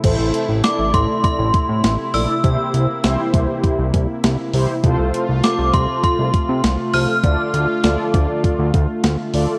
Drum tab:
CC |x-------|--------|--------|--------|
HH |xxxxxxxo|xxxxxxxo|xxxxxxxo|xxxxxxxo|
SD |--o---o-|--o---o-|--o---o-|--o---o-|
BD |o--ooo--|o--ooo--|o--ooo--|o--ooo--|